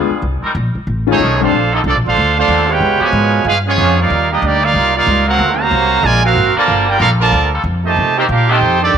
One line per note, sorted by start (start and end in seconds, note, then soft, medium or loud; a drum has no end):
0.00 0.23 G3 medium
0.00 0.23 B3 medium
0.00 0.23 F4 medium
0.00 0.23 G#4 medium
0.10 muted upright bass stroke soft
0.22 0.41 C2 medium
0.42 0.51 G3 loud
0.42 0.51 C4 medium
0.42 0.51 D#4 medium
0.42 0.51 A#4 loud
0.42 muted upright bass stroke soft
0.55 0.74 A#1 loud
0.75 muted upright bass stroke medium
0.87 1.18 A1 medium
1.07 1.18 D#3 medium
1.07 1.39 D#3 medium
1.07 1.18 G#3 medium
1.07 1.39 A3 medium
1.07 1.18 C#4 medium
1.07 1.39 C#4 medium
1.07 1.18 F4 medium
1.11 1.40 A3 medium
1.11 1.39 D#4 medium
1.11 1.40 G#4 medium
1.11 1.39 C#5 medium
1.20 1.51 B1 loud
1.20 1.52 F3 loud
1.20 1.52 C#4 medium
1.20 1.52 D#4 medium
1.20 1.52 A4 medium
1.40 1.51 D3 medium
1.40 1.51 G3 medium
1.40 1.70 A3 medium
1.40 1.51 C4 medium
1.40 1.70 D4 medium
1.40 1.51 D4 medium
1.40 1.71 D4 medium
1.40 1.70 F4 medium
1.40 1.71 A4 medium
1.40 1.71 C5 medium
1.40 1.71 F5 medium
1.52 1.83 A#1 medium
1.71 1.80 D3 loud
1.71 1.80 A#3 medium
1.71 1.80 C4 medium
1.71 1.79 C4 medium
1.71 1.78 D#4 medium
1.71 1.79 F4 medium
1.71 1.80 A4 loud
1.71 1.79 A4 medium
1.71 1.79 D#5 medium
1.84 1.95 C2 loud
1.84 1.94 F3 medium
1.84 1.94 A3 medium
1.84 1.95 C4 medium
1.84 1.94 D4 medium
1.84 1.96 F4 medium
1.84 1.95 A4 medium
1.84 1.95 D5 medium
1.95 2.05 A#1 medium
2.05 2.16 A1 medium
2.05 2.35 A3 medium
2.05 2.35 D4 medium
2.05 2.36 D4 medium
2.05 2.35 F4 medium
2.05 2.36 A4 medium
2.05 2.36 C5 medium
2.05 2.36 F5 loud
2.16 2.47 D2 medium
2.37 2.67 A3 medium
2.37 2.67 D4 medium
2.37 2.68 D4 medium
2.37 2.67 F4 medium
2.37 2.68 A4 medium
2.37 2.68 C5 medium
2.37 2.68 F5 loud
2.47 2.80 D#2 medium
2.47 2.80 D3 medium
2.47 2.80 A#3 medium
2.47 2.80 C4 medium
2.47 2.80 A4 medium
2.69 3.01 G#3 medium
2.69 3.01 B3 medium
2.69 3.02 F4 medium
2.69 3.01 G4 loud
2.69 3.02 B4 medium
2.69 3.02 C#5 medium
2.69 3.02 G5 loud
2.81 2.99 C#2 medium
3.00 3.46 B2 loud
3.00 3.09 F3 loud
3.00 3.46 F3 loud
3.00 3.45 G#3 loud
3.00 3.09 B3 loud
3.00 3.09 C#4 loud
3.00 3.46 F4 medium
3.00 3.09 G4 loud
3.00 3.47 B4 medium
3.00 3.47 C#5 medium
3.00 3.47 G#5 loud
3.00 muted upright bass stroke soft
3.12 3.44 G#2 loud
3.44 3.76 G2 medium
3.44 3.55 G#3 medium
3.44 3.55 B3 medium
3.44 3.56 C#4 medium
3.44 3.55 F4 medium
3.44 3.56 G#4 medium
3.44 3.57 B4 medium
3.44 3.56 F5 loud
3.66 3.96 F3 medium
3.66 3.96 G#3 medium
3.66 3.97 B3 medium
3.66 3.96 C#4 medium
3.66 3.97 F4 loud
3.66 3.97 G#4 medium
3.66 3.97 C#5 loud
3.78 4.09 F2 medium
3.78 4.10 F3 medium
3.78 4.10 B3 medium
3.78 4.10 C#4 medium
3.78 4.10 G4 medium
3.97 4.30 G3 medium
3.97 4.30 A#3 medium
3.97 4.31 D#4 medium
3.97 4.30 F4 medium
3.97 4.31 A#4 medium
3.97 4.31 D5 medium
3.97 4.31 F5 loud
4.10 4.41 D#2 medium
4.31 4.41 G3 medium
4.31 4.41 A#3 medium
4.31 4.43 A#3 medium
4.31 4.43 D4 medium
4.31 4.42 D#4 medium
4.31 4.43 G4 medium
4.31 4.42 D#5 medium
4.42 4.73 D2 loud
4.42 4.61 G3 medium
4.42 4.61 A#3 medium
4.42 4.63 A#3 medium
4.42 4.62 D4 medium
4.42 4.63 D#4 medium
4.42 4.64 G4 loud
4.42 4.64 D5 loud
4.62 4.94 G3 loud
4.62 4.94 A#3 loud
4.62 4.95 D#4 loud
4.62 4.94 F4 loud
4.62 4.95 A#4 medium
4.62 4.95 D5 loud
4.62 4.96 F5 loud
4.74 5.06 C2 medium
4.95 5.25 G3 medium
4.95 5.25 A#3 medium
4.95 5.26 D#4 loud
4.95 5.25 F4 medium
4.95 5.26 A#4 medium
4.95 5.26 D5 loud
4.95 5.26 F5 loud
5.07 5.38 C#2 loud
5.26 5.69 F#3 loud
5.26 5.57 A#3 loud
5.26 5.68 C4 medium
5.26 5.57 C4 medium
5.26 5.58 C4 medium
5.26 5.69 D4 medium
5.26 5.57 F#4 medium
5.26 5.68 A#4 loud
5.26 5.58 A#4 medium
5.26 5.58 F5 medium
5.26 5.58 F#5 loud
5.38 5.70 D2 medium
5.60 6.04 C3 loud
5.60 6.04 F#3 loud
5.60 6.04 A#3 loud
5.60 6.04 F#4 loud
5.60 6.04 C5 medium
5.60 6.04 F5 loud
5.60 6.04 A#5 loud
5.71 6.02 C2 loud
6.03 6.35 A#1 loud
6.03 6.24 G#3 medium
6.03 6.24 F4 loud
6.03 6.23 A#4 loud
6.03 6.24 D5 medium
6.03 6.24 G#5 loud
6.24 6.54 A#3 medium
6.24 6.54 C4 medium
6.24 6.54 F#4 medium
6.24 6.54 A#4 medium
6.24 6.54 F5 loud
6.35 6.54 G#1 medium
6.55 6.86 D3 loud
6.55 6.86 F3 medium
6.55 6.98 G3 loud
6.55 6.98 A#3 loud
6.55 6.86 A#3 medium
6.55 6.98 F4 loud
6.55 6.86 F4 loud
6.55 6.98 A#4 loud
6.55 6.86 A#4 medium
6.55 6.86 D5 medium
6.55 6.86 A5 loud
6.55 muted upright bass stroke soft
6.68 6.99 G1 medium
6.88 6.99 A#3 medium
6.88 6.99 D4 medium
6.88 7.01 F4 medium
6.88 7.00 G4 medium
6.88 6.99 A#4 medium
6.88 7.01 D5 medium
6.88 7.01 G5 medium
7.00 7.31 A#1 loud
7.00 7.49 G3 medium
7.00 7.10 A#3 medium
7.00 7.49 A#3 medium
7.00 7.09 D4 medium
7.00 7.10 D4 medium
7.00 7.09 F4 medium
7.00 7.49 F4 medium
7.00 7.09 A4 medium
7.00 7.49 A4 medium
7.00 7.09 A#4 medium
7.00 7.09 F5 loud
7.20 7.50 D3 medium
7.20 7.50 F3 medium
7.20 7.50 A#3 medium
7.20 7.50 F4 medium
7.20 7.50 A#4 loud
7.20 7.50 D5 medium
7.20 7.50 A5 loud
7.32 7.63 D2 loud
7.53 7.61 G3 medium
7.53 7.62 A#3 medium
7.53 7.61 F4 medium
7.53 7.61 A4 loud
7.64 7.95 F2 loud
7.84 8.14 A#2 medium
7.84 8.14 D#3 medium
7.84 8.14 A3 medium
7.84 8.15 G4 medium
7.84 8.15 C5 medium
7.84 8.15 D#5 medium
7.84 8.15 A5 medium
7.96 8.28 C3 medium
8.17 8.25 D#3 loud
8.17 8.22 A#3 medium
8.17 8.26 A#3 loud
8.17 8.25 C4 loud
8.17 8.23 D#4 medium
8.17 8.24 D#4 medium
8.17 8.26 G4 loud
8.17 8.23 G4 medium
8.17 8.24 A#4 medium
8.17 8.24 C5 medium
8.17 8.23 G5 medium
8.28 8.60 A#2 loud
8.28 8.49 D4 medium
8.28 8.47 F4 medium
8.28 8.49 G4 medium
8.28 8.49 A#4 medium
8.28 8.49 F5 medium
8.48 8.57 D#3 loud
8.48 8.57 A3 loud
8.48 8.81 C4 loud
8.48 8.57 D4 loud
8.48 8.81 D#4 medium
8.48 8.82 D#4 loud
8.48 8.81 G4 medium
8.48 8.57 G4 loud
8.48 8.82 A4 medium
8.48 8.82 C5 medium
8.48 8.82 G5 loud
8.61 8.92 F2 medium
8.82 8.98 D#3 medium
8.82 8.98 A3 medium
8.82 8.98 C4 medium
8.82 8.98 D4 medium
8.82 8.98 G4 medium
8.82 8.98 A4 medium
8.82 8.98 D5 loud
8.94 8.98 D#2 medium